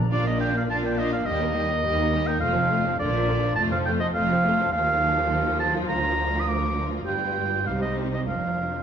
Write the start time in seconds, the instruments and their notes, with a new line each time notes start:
0.10 double bass section A#1, cello section A#2, timpani A#2, viola section D4, violin section F4 F5, oboe D5
0.24 viola section A#3, violin section D4 D5, oboe D#5
0.39 viola section D4, violin section F4 F5, oboe G5
0.53 viola section A#3, violin section D4 D5
0.57 oboe F5
0.68 double bass section A#1, cello section A#2, viola section D4, violin section F4 F5, oboe A5
0.82 viola section A#3, violin section D4 D5, oboe G5
0.97 viola section D4, violin section F4 F5, oboe D#5
1.11 viola section A#3, violin section D4 D5, oboe F5
1.26 cello section D#2, double bass section D#2, viola section G3, violin section G4 D#5, oboe D#5
1.41 viola section A#3, violin section D#4 A#4
1.55 viola section G3, violin section G4 D#5
1.70 viola section A#3, violin section D#4 A#4
1.85 cello section D#2, double bass section D#2, viola section G3, violin section G4 D#5
1.98 viola section A#3, violin section D#4 A#4
2.12 viola section G3, violin section G4 D#5
2.27 viola section A#3, violin section D#4 A#4, oboe G5
2.40 double bass section F1, timpani F2, cello section F2, viola section A3, violin section F4 C5, oboe F5
2.56 viola section F3, violin section C4 A4
2.71 viola section A3, violin section F4 C5
2.86 viola section F3, violin section C4 A4
2.99 double bass section A#1, cello section A#2, viola section D3, violin section F4 D5, oboe D5
3.14 viola section F3, violin section D4 A#4
3.29 viola section D3, violin section F4 D5
3.43 viola section F3, violin section D4 A#4
3.55 double bass section F1, cello section F2, viola section A3, violin section F4 C5, oboe A5
3.72 viola section F3, violin section C4 A4, oboe F5
3.85 viola section A3, violin section F4 C5, oboe G5
4.00 viola section F3, violin section C4 A4, oboe D#5
4.15 double bass section F1, cello section F2, viola section A3, violin section F4 C5, oboe F5
4.31 viola section F3, violin section C4 A4
4.45 viola section A3, violin section F4 C5
4.60 viola section F3, violin section C4 A4
4.72 double bass section D#2, cello section D#2, viola section F3, violin section F4 A4, oboe F5
5.59 oboe A5
5.89 double bass section D2, cello section D2, violin section A#4, oboe A#5
6.40 oboe D#6
6.48 oboe D6
7.07 double bass section G1, cello section G2, viola section G3, violin section F4 B4, oboe G5
7.67 double bass section C2, cello section C3, violin section D#4 C5, oboe F5
7.82 oboe D#5
8.14 oboe D#5
8.28 double bass section F1, cello section F2, viola section F3, violin section D4 A#4, oboe F5